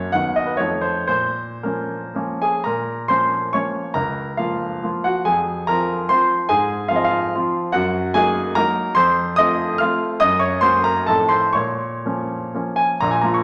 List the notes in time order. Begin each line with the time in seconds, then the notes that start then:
Already playing: F#2 F#3 A#3 C#4 C#5
0.12 D#2 F#3 B3 D#4 F#5
0.36 D#5
0.46 B4
0.57 F2 F3 A3 D#4 C#5
0.81 C5
1.07 A#2 C5
1.63 F3 A#3 C#4 A#4
2.14 F3 A#3 C#4
2.42 G#4 G#5
2.64 A#2 A#4 A#5
3.08 F3 A#3 C#4 C5 C6
3.53 F3 A#3 C#4 C#5 C#6
3.94 C#2 A#4 A#5
4.37 F3 A#3 F4 F5
4.83 F3 A#3 F4
5.04 F#4 F#5
5.25 F2 G#4 G#5
5.67 F3 C4 F4 A#4 A#5
6.09 F3 C4 F4 C5 C6
6.49 G#2 G#4 G#5
6.88 F3 C4 F4 F5
6.96 D#5
7.04 F4 F5
7.35 F3 C4 F4
7.72 F#2 F#4 F#5
8.14 F#3 A#3 D#4 G#4 G#5
8.55 F#3 A#3 D#4 A#4 A#5
8.95 F2 C5 C6
9.36 A3 C4 F4 D#5 D#6
9.78 A3 C4 F4 F5 F6
10.20 F#2 D#5 D#6
10.39 C#5 C#6
10.61 F#3 A#3 C#4 C5 C6
10.84 A#4 A#5
11.06 A2 F3 C4 D#4 A4 A5
11.29 C5 C6
11.53 A#2 C#5 C#6
12.05 F3 A#3 C#4
12.54 F3 A#3 C#4
12.76 G#5
13.00 A#1 A#2 A#5
13.11 G#5
13.21 F3 A#3 F4 A#5
13.34 C#6